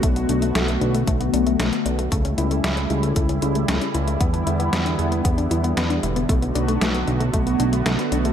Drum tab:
HH |xxxxxxxxxxxxxxxx|xxxxxxxxxxxxxxxx|xxxxxxxxxxxxxxxx|xxxxxxxxxxxxxxxx|
SD |----o-------o---|----o-------o---|----o-------o---|----o-------o---|
BD |o-------o-------|o-------o-------|o-------o-------|o-------o-------|